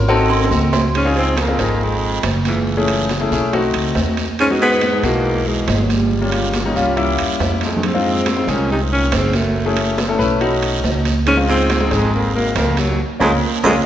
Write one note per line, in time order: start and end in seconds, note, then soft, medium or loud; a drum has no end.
0.00 0.48 G#1 loud
0.08 0.77 C4 loud
0.08 0.77 D#4 medium
0.08 0.77 F#4 loud
0.08 0.77 A4 loud
0.08 low agogo medium
0.08 long guiro medium
0.30 high conga soft
0.30 high timbale medium
0.30 low agogo loud
0.44 high timbale medium
0.51 1.53 C#2 loud
0.51 high conga medium
0.51 short guiro medium
0.73 high conga medium
0.73 low timbale loud
0.73 low agogo medium
0.73 short guiro medium
0.94 1.14 G#2 medium
0.94 1.16 C#4 loud
0.94 high conga soft
0.94 high timbale medium
0.94 long guiro medium
1.05 1.36 C4 medium
1.05 1.35 D#4 medium
1.05 1.36 F4 medium
1.05 1.36 G#4 loud
1.15 1.39 G#2 medium
1.15 1.42 C4 loud
1.15 high conga soft
1.37 1.80 F2 medium
1.37 1.85 A#3 loud
1.37 high conga medium
1.37 high timbale loud
1.37 low timbale medium
1.37 short guiro medium
1.48 1.56 C4 medium
1.48 1.56 D#4 medium
1.48 1.56 F4 medium
1.48 1.56 G#4 medium
1.58 2.20 G#1 medium
1.58 2.19 C4 medium
1.58 2.19 D#4 medium
1.58 2.20 F4 medium
1.58 2.20 G#4 medium
1.58 high conga soft
1.58 high timbale medium
1.58 short guiro medium
1.80 2.24 F2 medium
1.80 high conga soft
1.80 long guiro medium
1.84 2.25 G#3 medium
2.01 high conga soft
2.23 3.25 F#1 medium
2.23 high conga medium
2.23 high timbale loud
2.23 low timbale medium
2.23 short guiro medium
2.45 3.28 C#2 medium
2.45 3.28 E3 medium
2.45 high conga medium
2.45 high timbale medium
2.45 short guiro medium
2.67 high conga soft
2.67 long guiro medium
2.77 3.08 A3 medium
2.77 3.08 C#4 medium
2.77 3.07 E4 medium
2.77 3.08 G#4 loud
2.88 high timbale medium
3.09 high conga medium
3.09 high timbale medium
3.09 low timbale medium
3.09 short guiro medium
3.21 3.28 A3 medium
3.21 3.28 C#4 medium
3.21 3.28 E4 medium
3.21 3.28 G#4 medium
3.31 3.71 B1 medium
3.31 3.52 A3 loud
3.31 3.53 C#4 medium
3.31 3.53 E4 medium
3.31 3.53 G#4 loud
3.31 high conga soft
3.31 short guiro medium
3.53 4.22 A3 medium
3.53 4.22 C4 medium
3.53 4.22 D#4 medium
3.53 4.22 F#4 loud
3.53 high timbale medium
3.53 long guiro medium
3.74 3.95 C#2 medium
3.74 high conga soft
3.74 high timbale loud
3.95 4.97 E2 medium
3.95 high conga medium
3.95 low timbale medium
3.95 short guiro medium
4.17 high conga medium
4.17 high timbale medium
4.17 short guiro medium
4.39 4.49 G#2 medium
4.39 4.50 C#4 loud
4.39 high conga soft
4.39 high timbale medium
4.39 long guiro medium
4.50 4.80 G#3 medium
4.50 4.80 B3 medium
4.50 4.80 D#4 medium
4.50 4.80 F#4 loud
4.61 5.06 G#2 medium
4.61 5.06 B3 loud
4.61 high conga soft
4.81 high conga medium
4.81 high timbale medium
4.81 low timbale medium
4.81 short guiro medium
4.93 5.00 G#3 medium
4.93 5.00 B3 medium
4.93 5.00 D#4 medium
4.93 5.01 G#4 medium
5.03 5.64 B1 medium
5.03 5.47 E2 loud
5.03 5.64 B2 medium
5.03 5.64 G#3 medium
5.03 5.49 A#3 loud
5.03 5.64 D#4 medium
5.03 5.64 F#4 medium
5.03 high conga soft
5.03 high timbale medium
5.03 short guiro medium
5.25 high conga soft
5.25 long guiro medium
5.47 5.85 E2 medium
5.47 5.85 G#3 loud
5.47 high conga soft
5.68 6.70 G1 loud
5.68 high conga medium
5.68 high timbale medium
5.68 low timbale medium
5.68 short guiro medium
5.83 5.92 D#2 medium
5.83 5.93 F#3 medium
5.89 6.76 C#2 medium
5.89 6.77 G3 medium
5.89 high conga medium
5.89 high timbale medium
5.89 short guiro medium
6.11 high conga soft
6.11 long guiro medium
6.21 6.52 G3 medium
6.21 6.52 A#3 medium
6.21 6.52 C#4 medium
6.21 6.52 F4 medium
6.32 high conga soft
6.32 high timbale medium
6.54 high conga loud
6.54 high timbale medium
6.54 low timbale medium
6.54 short guiro medium
6.65 6.73 G3 medium
6.65 6.73 A#3 medium
6.65 6.73 C#4 medium
6.65 6.73 D#4 medium
6.76 7.16 C2 medium
6.76 6.95 G3 loud
6.76 6.95 A#3 medium
6.76 6.95 C#4 medium
6.76 6.98 F4 loud
6.76 high conga soft
6.76 short guiro medium
6.96 7.66 G3 medium
6.96 7.66 A#3 medium
6.96 7.66 C#4 medium
6.96 7.66 E4 loud
6.96 high conga soft
6.96 high timbale medium
6.96 long guiro medium
7.18 7.39 E2 medium
7.18 high conga soft
7.18 high timbale loud
7.40 8.42 F2 medium
7.40 high conga medium
7.40 low timbale medium
7.40 short guiro medium
7.61 7.85 F2 medium
7.61 7.87 G#3 medium
7.61 high conga medium
7.61 high timbale medium
7.61 short guiro medium
7.77 low conga loud
7.83 8.52 G#2 medium
7.83 8.52 C4 loud
7.83 high conga soft
7.83 high timbale medium
7.83 long guiro medium
7.94 8.25 G#3 medium
7.94 8.25 C4 medium
7.94 8.25 D#4 medium
7.94 8.25 F4 medium
8.05 high conga soft
8.26 high conga medium
8.26 high timbale loud
8.26 low timbale medium
8.26 short guiro medium
8.37 8.45 G#3 medium
8.37 8.45 C4 medium
8.37 8.45 D#4 medium
8.37 8.45 F4 medium
8.47 9.08 C2 loud
8.47 8.71 A#2 medium
8.47 9.08 G#3 medium
8.47 9.08 C4 medium
8.47 8.71 C#4 medium
8.47 9.08 D#4 medium
8.47 9.08 G#4 medium
8.47 high conga soft
8.47 high timbale medium
8.47 short guiro medium
8.70 8.81 C3 medium
8.70 8.81 D#4 medium
8.70 high conga soft
8.70 long guiro medium
8.91 9.16 A#2 medium
8.91 9.16 C#4 loud
8.91 high conga soft
9.12 10.14 F#1 loud
9.12 9.37 G#2 medium
9.12 9.37 C4 medium
9.12 high conga medium
9.12 high timbale loud
9.12 low timbale medium
9.12 short guiro medium
9.33 9.99 F#2 medium
9.33 9.99 A3 medium
9.33 high conga medium
9.33 high timbale medium
9.33 short guiro medium
9.56 high conga soft
9.56 long guiro medium
9.66 9.96 A3 medium
9.66 9.96 C#4 medium
9.66 9.96 E4 medium
9.66 9.96 G#4 medium
9.77 high timbale loud
9.98 high conga loud
9.98 high timbale medium
9.98 low timbale medium
9.98 short guiro medium
10.08 10.17 A3 medium
10.08 10.17 C#4 medium
10.08 10.17 E4 medium
10.08 10.17 A4 medium
10.19 10.80 B1 medium
10.19 10.40 A3 medium
10.19 10.40 C#4 medium
10.19 10.41 E4 medium
10.19 10.41 B4 loud
10.19 high conga soft
10.19 short guiro medium
10.40 11.10 A3 medium
10.40 11.10 C#4 medium
10.40 11.10 D#4 medium
10.40 11.10 F#4 loud
10.40 high conga soft
10.40 high timbale medium
10.40 long guiro medium
10.63 high conga soft
10.63 high timbale medium
10.84 11.86 C#2 medium
10.84 high conga medium
10.84 low timbale medium
10.84 short guiro medium
11.05 high conga medium
11.05 high timbale medium
11.05 short guiro medium
11.26 11.36 G#2 medium
11.26 11.38 C#4 loud
11.26 high conga soft
11.26 high timbale medium
11.26 long guiro medium
11.37 11.68 G#3 loud
11.37 11.68 C4 medium
11.37 11.68 D#4 medium
11.37 11.68 F4 medium
11.48 11.95 G#2 medium
11.48 11.94 C4 loud
11.48 high conga soft
11.70 high conga medium
11.70 high timbale medium
11.70 low timbale medium
11.70 short guiro medium
11.80 11.89 G#3 medium
11.80 11.89 C4 medium
11.80 11.89 D#4 medium
11.80 11.89 G#4 medium
11.91 12.53 G#1 medium
11.91 12.13 F2 medium
11.91 12.52 G#3 medium
11.91 12.14 G#3 loud
11.91 12.52 C4 medium
11.91 12.52 D#4 medium
11.91 12.52 G#4 medium
11.91 high conga soft
11.91 high timbale medium
11.91 short guiro medium
12.13 12.34 F2 medium
12.13 12.34 A#3 medium
12.13 high conga soft
12.13 long guiro medium
12.34 12.55 F#2 medium
12.34 12.55 A#3 medium
12.34 high conga soft
12.55 12.96 C#2 loud
12.55 12.80 F2 medium
12.55 12.81 A#3 medium
12.55 high conga medium
12.55 high timbale medium
12.55 low timbale medium
12.55 short guiro medium
12.77 13.00 D#2 medium
12.77 13.00 F#3 medium
12.77 high conga medium
12.77 high timbale medium
12.77 short guiro medium
13.20 13.37 C#2 loud
13.20 13.31 F2 loud
13.20 13.32 G#3 medium
13.20 13.34 C4 medium
13.20 13.34 C#4 medium
13.20 13.35 F4 medium
13.20 high conga medium
13.20 high timbale loud
13.20 long guiro medium
13.63 13.80 C#2 medium
13.63 13.74 F2 loud
13.63 13.76 G#3 loud
13.63 13.78 C4 loud
13.63 13.78 C#4 medium
13.63 13.78 F4 medium
13.63 high conga loud
13.63 high timbale loud
13.63 long guiro loud